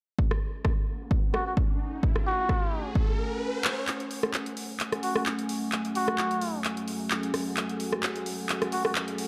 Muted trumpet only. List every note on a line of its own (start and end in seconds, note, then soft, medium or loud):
1.34 1.42 F#4 medium
1.46 1.53 F#4 medium
2.26 2.91 F#4 loud
5.03 5.11 F#4 medium
5.16 5.22 F#4 medium
5.96 6.60 F#4 loud
8.72 8.80 F#4 medium
8.85 8.92 F#4 medium